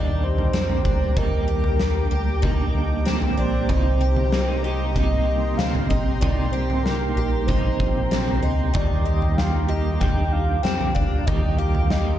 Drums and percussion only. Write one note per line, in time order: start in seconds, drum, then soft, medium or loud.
0.38 floor tom soft
0.54 snare loud
0.69 floor tom medium
0.85 kick medium
1.17 kick loud
1.17 floor tom loud
1.64 floor tom medium
1.80 snare medium
2.43 kick medium
2.43 floor tom medium
3.07 snare medium
3.22 floor tom medium
3.69 kick loud
3.69 floor tom loud
4.16 floor tom medium
4.32 snare loud
4.96 kick medium
4.96 floor tom medium
5.59 snare medium
5.75 floor tom medium
5.91 kick medium
6.22 kick loud
6.22 floor tom loud
6.70 floor tom medium
6.86 snare medium
7.49 kick medium
7.49 floor tom medium
7.80 kick medium
8.12 snare loud
8.28 floor tom medium
8.75 kick loud
8.75 floor tom loud
9.22 floor tom medium
9.38 snare loud
10.01 kick medium
10.01 floor tom medium
10.65 snare medium
10.81 floor tom medium
10.96 kick medium
11.28 kick loud
11.28 floor tom loud
11.75 floor tom medium
11.90 snare loud